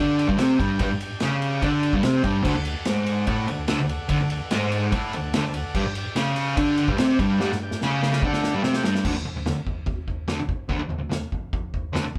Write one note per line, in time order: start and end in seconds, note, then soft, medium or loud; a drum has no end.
0.00 0.29 D3 medium
0.00 0.29 D4 medium
0.00 0.16 G4 loud
0.00 0.16 D5 loud
0.00 0.17 G5 loud
0.18 0.38 G4 medium
0.18 0.37 D5 medium
0.18 0.38 G5 medium
0.18 ride medium
0.27 0.37 G2 loud
0.27 0.38 G3 loud
0.27 kick loud
0.38 0.59 C3 medium
0.38 0.59 C4 loud
0.38 0.58 G4 medium
0.38 0.58 D5 medium
0.38 0.58 G5 medium
0.38 snare loud
0.38 ride loud
0.59 0.79 G2 loud
0.59 0.79 G3 loud
0.59 0.78 G4 medium
0.59 0.78 D5 medium
0.59 0.78 G5 loud
0.59 kick loud
0.59 ride medium
0.79 0.90 G2 medium
0.79 0.91 G3 loud
0.79 0.99 G4 loud
0.79 0.99 D5 loud
0.79 0.99 G5 loud
0.79 kick loud
0.79 ride loud
0.91 1.08 G2 medium
1.00 1.21 G4 medium
1.00 1.21 D5 medium
1.00 1.20 G5 medium
1.00 ride medium
1.20 1.63 C#3 medium
1.20 1.63 C#4 loud
1.20 1.40 G4 medium
1.20 1.39 D5 medium
1.20 1.41 G5 loud
1.20 snare loud
1.20 ride medium
1.40 1.58 G4 medium
1.40 1.60 D5 medium
1.40 1.58 G5 loud
1.40 ride medium
1.59 1.94 D3 medium
1.59 1.80 G4 loud
1.59 1.80 D5 loud
1.59 1.80 G5 loud
1.59 kick loud
1.59 ride loud
1.64 1.94 D4 medium
1.81 2.01 G4 medium
1.81 2.01 D5 medium
1.81 2.01 G5 loud
1.81 ride medium
1.93 2.04 G2 medium
1.93 2.04 G3 loud
1.93 kick loud
2.03 2.23 C3 medium
2.03 2.24 C4 loud
2.03 2.23 G4 medium
2.03 2.23 D5 medium
2.03 2.23 G5 medium
2.03 snare loud
2.03 ride loud
2.23 2.43 G2 loud
2.23 2.44 G3 loud
2.23 2.43 G4 medium
2.23 2.44 D5 medium
2.23 2.44 G5 loud
2.23 kick loud
2.23 ride medium
2.43 2.54 D2 medium
2.43 2.55 D3 loud
2.43 2.64 A4 loud
2.43 2.64 D5 loud
2.43 2.65 F#5 loud
2.43 kick loud
2.43 crash loud
2.55 2.72 D2 medium
2.65 2.85 A4 medium
2.65 2.85 D5 medium
2.65 2.86 F#5 medium
2.65 ride medium
2.85 3.27 G#2 medium
2.85 3.27 G#3 loud
2.85 3.06 A4 medium
2.85 3.06 D5 medium
2.85 3.06 F#5 medium
2.85 snare loud
2.85 ride loud
3.06 3.25 A4 medium
3.06 3.25 D5 medium
3.06 3.26 F#5 medium
3.06 ride medium
3.26 3.48 A2 medium
3.26 3.48 A3 medium
3.26 3.46 A4 loud
3.26 3.46 D5 loud
3.26 3.46 F#5 loud
3.26 kick loud
3.26 ride loud
3.48 3.65 D2 medium
3.48 3.66 A4 medium
3.48 3.65 D5 medium
3.48 3.66 F#5 loud
3.48 ride medium
3.67 3.79 D2 loud
3.67 3.79 D3 loud
3.67 3.87 A4 medium
3.67 3.87 D5 medium
3.67 3.87 F#5 medium
3.67 snare loud
3.67 ride loud
3.80 3.96 D2 medium
3.89 4.08 A4 medium
3.89 4.08 D5 medium
3.89 4.09 F#5 loud
3.89 ride medium
4.09 4.20 D2 medium
4.09 4.20 D3 loud
4.09 4.29 A4 loud
4.09 4.29 D5 loud
4.09 4.30 F#5 loud
4.09 kick loud
4.09 ride loud
4.21 4.37 D2 medium
4.30 4.50 A4 medium
4.30 4.50 D5 medium
4.30 4.50 F#5 medium
4.30 ride medium
4.51 4.92 G#2 medium
4.51 4.93 G#3 medium
4.51 4.71 A4 medium
4.51 4.72 F#5 medium
4.51 snare loud
4.51 ride loud
4.55 4.72 D5 medium
4.72 4.92 F#5 loud
4.72 ride medium
4.76 4.93 A4 medium
4.76 4.93 D5 medium
4.92 5.13 A2 medium
4.92 5.13 A3 medium
4.92 5.12 A4 loud
4.92 5.12 D5 loud
4.92 5.13 F#5 loud
4.92 kick loud
4.92 ride loud
5.13 5.31 D2 medium
5.13 5.33 A4 medium
5.13 5.34 D5 medium
5.13 5.33 F#5 loud
5.13 ride medium
5.33 5.43 D2 medium
5.33 5.44 D3 loud
5.33 5.53 A4 medium
5.33 5.53 D5 medium
5.33 5.53 A5 loud
5.33 snare loud
5.33 ride loud
5.44 5.61 D2 medium
5.54 5.75 A4 medium
5.54 5.75 F#5 loud
5.54 ride medium
5.59 5.75 D5 medium
5.74 5.84 G2 loud
5.74 5.85 G3 loud
5.74 5.95 G4 loud
5.74 5.94 D5 loud
5.74 5.95 G5 loud
5.74 kick loud
5.74 crash medium
5.85 6.02 G2 medium
5.95 6.16 G4 medium
5.95 6.15 D5 medium
5.95 6.15 G5 medium
5.95 ride medium
6.16 6.57 C#3 medium
6.16 6.57 C#4 loud
6.16 6.35 G4 medium
6.16 6.35 D5 medium
6.16 6.35 G5 loud
6.16 snare loud
6.16 ride loud
6.36 6.55 G4 medium
6.36 6.56 D5 medium
6.36 6.56 G5 medium
6.36 ride medium
6.57 6.88 D3 medium
6.57 6.88 D4 medium
6.57 6.77 G4 loud
6.57 6.77 D5 loud
6.57 6.77 G5 loud
6.57 kick loud
6.57 ride loud
6.77 6.97 G4 medium
6.77 6.97 D5 medium
6.77 6.97 G5 loud
6.77 ride medium
6.88 6.98 G2 loud
6.88 6.99 G3 loud
6.88 kick loud
6.98 7.19 C3 loud
6.98 7.19 C4 loud
6.98 7.18 G4 medium
6.98 7.18 D5 medium
6.98 7.19 G5 medium
6.98 snare loud
6.98 ride loud
7.19 7.39 G2 loud
7.19 7.40 G3 loud
7.19 7.38 G4 loud
7.19 7.39 D5 medium
7.19 7.39 G5 loud
7.19 kick loud
7.19 ride medium
7.40 7.50 G2 medium
7.40 7.50 G3 loud
7.40 7.59 G4 loud
7.40 7.59 D5 loud
7.40 7.59 F#5 loud
7.40 snare medium
7.52 7.68 G2 medium
7.52 snare medium
7.63 7.81 G4 medium
7.63 7.81 D5 medium
7.63 7.81 G5 medium
7.71 snare medium
7.81 8.23 C#3 medium
7.81 8.23 C#4 loud
7.81 8.02 G4 medium
7.81 snare medium
7.86 8.02 D5 medium
7.86 8.02 G5 loud
8.03 8.22 G4 medium
8.03 8.22 D5 medium
8.03 8.23 G5 loud
8.03 snare medium
8.13 snare medium
8.22 8.54 D3 medium
8.22 8.54 D4 loud
8.22 kick loud
8.26 8.42 G4 loud
8.26 8.42 D5 loud
8.26 8.43 G5 loud
8.33 snare medium
8.43 8.62 G4 medium
8.43 8.62 D5 medium
8.43 8.62 G5 medium
8.43 snare medium
8.54 8.63 G2 medium
8.54 8.63 G3 loud
8.63 8.84 C3 medium
8.63 8.84 C4 loud
8.63 8.83 G4 medium
8.63 8.84 D5 medium
8.63 8.83 G5 loud
8.63 snare medium
8.73 snare medium
8.84 9.05 G2 loud
8.84 9.05 G3 loud
8.84 9.04 G4 medium
8.84 9.04 D5 medium
8.84 9.04 G5 loud
8.84 snare loud
8.95 snare medium
9.05 9.14 D2 medium
9.05 9.15 D3 loud
9.05 kick loud
9.05 floor tom medium
9.05 crash loud
9.15 9.24 D2 medium
9.25 muted distorted electric guitar stroke medium
9.25 floor tom medium
9.36 9.45 D2 medium
9.46 9.57 D2 medium
9.46 snare loud
9.46 floor tom medium
9.67 kick medium
9.67 floor tom medium
9.86 kick loud
9.86 floor tom medium
10.08 kick medium
10.08 floor tom medium
10.28 10.38 D2 loud
10.28 10.39 D3 loud
10.28 snare loud
10.28 floor tom medium
10.40 muted distorted electric guitar stroke medium
10.49 kick medium
10.49 floor tom medium
10.69 10.78 D2 medium
10.69 10.80 D3 loud
10.69 kick loud
10.69 floor tom medium
10.80 10.88 D2 medium
10.89 muted distorted electric guitar stroke medium
10.89 floor tom medium
10.99 11.09 D2 medium
11.10 11.21 D2 medium
11.10 snare loud
11.10 floor tom medium
11.32 kick medium
11.32 floor tom medium
11.53 kick loud
11.53 floor tom medium
11.74 kick medium
11.74 floor tom medium
11.93 12.04 D2 loud
11.93 12.04 D3 loud
11.93 snare loud
11.93 floor tom medium
12.05 muted distorted electric guitar stroke medium
12.15 kick medium
12.15 floor tom medium